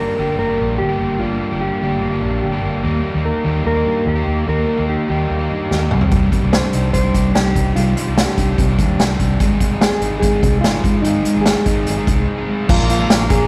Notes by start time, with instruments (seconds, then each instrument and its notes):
Already playing: overdriven electric guitar G3 A#3 D4 G4, clean electric guitar A#3 G4
0.00 clean electric guitar D4 A#4
0.17 fingered electric bass G1, overdriven electric guitar G3 A#3 D4 G4, clean electric guitar G4
0.39 fingered electric bass G1, clean electric guitar A#3 A#4
0.48 overdriven electric guitar G3 A#3 D4 G4
0.59 fingered electric bass A#1, clean electric guitar D4
0.78 fingered electric bass G1, clean electric guitar G4
0.89 overdriven electric guitar G3 A#3 D4 G4
1.00 fingered electric bass G1, clean electric guitar A#3
1.19 fingered electric bass G1, overdriven electric guitar G2 D3 G3 A#3 D4 G4, clean electric guitar A#3 F4
1.41 clean electric guitar A#3
1.51 fingered electric bass G1, overdriven electric guitar G3 A#3 D4 G4
1.61 clean electric guitar D4 G4
1.81 fingered electric bass G1, overdriven electric guitar G3 A#3 D4 G4, clean electric guitar G4
2.01 fingered electric bass G1, clean electric guitar A#3
2.11 overdriven electric guitar G3 A#3 D4 G4
2.22 fingered electric bass A#1, clean electric guitar D4
2.42 fingered electric bass G1, clean electric guitar G4
2.52 overdriven electric guitar G3 A#3 D4 G4
2.63 fingered electric bass G1, clean electric guitar A#3
2.83 fingered electric bass D#2, overdriven electric guitar D#3 G3 A#3 D#4 G4, clean electric guitar A#3
3.04 clean electric guitar A#3
3.14 fingered electric bass D#2, overdriven electric guitar A#3 D#4 G4
3.25 clean electric guitar D#4 A#4
3.44 fingered electric bass D#2, overdriven electric guitar G3 A#3 D#4 G4, clean electric guitar G4
3.65 fingered electric bass D#2, clean electric guitar A#3 A#4
3.75 overdriven electric guitar A#3 D#4 G4
3.85 fingered electric bass G2, clean electric guitar D#4
4.06 fingered electric bass D#2, clean electric guitar G4
4.15 overdriven electric guitar A#3 D#4 G4
4.27 fingered electric bass D#2, clean electric guitar A#3
4.47 fingered electric bass D#2, overdriven electric guitar D#3 G3 A#3 D#4 G4, clean electric guitar A#3 A#4
4.69 clean electric guitar A#3
4.77 fingered electric bass D#2, overdriven electric guitar A#3 D#4 G4
4.89 clean electric guitar D#4 G4
5.08 fingered electric bass D#2, overdriven electric guitar G3 A#3 D#4 G4, clean electric guitar G4
5.30 fingered electric bass D#2, clean electric guitar A#3
5.39 overdriven electric guitar A#3 D#4 G4
5.51 fingered electric bass G2, clean electric guitar D#4
5.71 fingered electric bass D#2, clean electric guitar G4, snare
5.81 overdriven electric guitar A#3 D#4 G4
5.91 fingered electric bass C2, overdriven electric guitar C3 D#3 G3 C4 D4 G4, clean electric guitar G3, mid tom
6.01 floor tom
6.12 clean electric guitar G3, kick, closed hi-hat
6.32 clean electric guitar G3, kick, closed hi-hat
6.42 fingered electric bass C2, overdriven electric guitar G3 C4 D4 G4
6.53 clean electric guitar D4 C5, snare, closed hi-hat
6.73 fingered electric bass C2, overdriven electric guitar G3 C4 D4 G4, clean electric guitar D#4, closed hi-hat
6.93 fingered electric bass C2, clean electric guitar G3 C5, kick, closed hi-hat
7.04 overdriven electric guitar G3 C4 D4 G4
7.14 fingered electric bass C2, clean electric guitar D4, kick, closed hi-hat
7.35 fingered electric bass C2, clean electric guitar D#4 G4, snare, closed hi-hat
7.45 overdriven electric guitar G3 C4 D4 G4
7.56 fingered electric bass C2, clean electric guitar G3, kick, closed hi-hat
7.76 fingered electric bass C2, overdriven electric guitar C3 D#3 G3 C4 D4 G4, clean electric guitar G3 F4, closed hi-hat
7.97 clean electric guitar G3, closed hi-hat
8.06 fingered electric bass C2, overdriven electric guitar G3 C4 D4 G4
8.17 clean electric guitar D4 G4, snare, closed hi-hat
8.38 fingered electric bass C2, overdriven electric guitar G3 C4 D4 G4, clean electric guitar D#4, kick, closed hi-hat
8.58 fingered electric bass C2, clean electric guitar G3, kick, closed hi-hat
8.69 overdriven electric guitar G3 C4 D4 G4
8.79 fingered electric bass D#2, clean electric guitar D4, kick, closed hi-hat
8.99 fingered electric bass C2, clean electric guitar D#4, snare, closed hi-hat
9.10 overdriven electric guitar G3 C4 D4 G4
9.20 fingered electric bass C2, clean electric guitar G3, kick, closed hi-hat
9.40 fingered electric bass G#1, overdriven electric guitar G#2 D#3 G#3 C4 D#4 G#4, clean electric guitar G#3, kick, closed hi-hat
9.60 clean electric guitar G#3, kick, closed hi-hat
9.71 fingered electric bass G#1, overdriven electric guitar G#3 C4 D#4 G#4
9.81 clean electric guitar C4 G#4, snare, closed hi-hat
10.01 fingered electric bass G#1, overdriven electric guitar G#3 C4 D#4 G#4, clean electric guitar D#4, closed hi-hat
10.20 fingered electric bass G#1, clean electric guitar G#3 G#4, kick, closed hi-hat
10.32 overdriven electric guitar G#3 C4 D#4 G#4
10.43 fingered electric bass C2, clean electric guitar C4, kick, closed hi-hat
10.61 clean electric guitar D#4 F4, snare, closed hi-hat
10.73 overdriven electric guitar G#3 C4 D#4 G#4
10.84 fingered electric bass G#1, clean electric guitar G#3, kick, closed hi-hat
11.02 fingered electric bass G#1, overdriven electric guitar G#2 D#3 G#3 C4, clean electric guitar G#3 D#4, closed hi-hat
11.06 overdriven electric guitar D#4 G#4
11.25 clean electric guitar G#3, closed hi-hat
11.35 fingered electric bass G#1, overdriven electric guitar G#3 C4 D#4 G#4
11.41 clean electric guitar G#4
11.46 clean electric guitar C4, snare, closed hi-hat
11.66 fingered electric bass G#1, overdriven electric guitar G#3 C4 D#4 G#4, clean electric guitar D#4, kick, closed hi-hat
11.87 fingered electric bass G#1, clean electric guitar G#3, closed hi-hat
11.97 overdriven electric guitar G#3 C4 D#4 G#4
12.07 fingered electric bass C2, clean electric guitar C4, kick, closed hi-hat
12.28 clean electric guitar D#4
12.38 overdriven electric guitar G#3 C4 D#4 G#4
12.49 clean electric guitar G#3
12.68 fingered electric bass A#1, overdriven electric guitar A#2 D3 F3 A#3 D4 A#4, clean electric guitar F3 F4, pipe organ A#4 F5 D6, kick, crash
12.90 clean electric guitar A#3 F4, closed hi-hat
12.99 overdriven electric guitar F3 A#3 D4 A#4
13.10 fingered electric bass A#1, clean electric guitar C4, snare, closed hi-hat
13.21 clean electric guitar D4
13.30 fingered electric bass A#1, overdriven electric guitar F3 A#3 D4 A#4, clean electric guitar A#3 G#4, kick, closed hi-hat